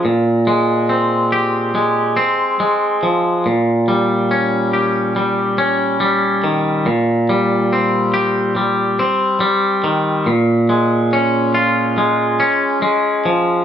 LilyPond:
\new Staff \with { instrumentName = "Clean electric guitar" } { \clef bass \time 4/4 \key bes \dorian \tempo 4 = 70 bes,8 aes8 c'8 g'8 aes8 c'8 aes8 f8 | bes,8 g8 des'8 g'8 g8 des'8 g8 ees8 | bes,8 g8 c'8 g'8 g8 c'8 g8 ees8 | bes,8 aes8 des'8 f'8 aes8 des'8 aes8 f8 | }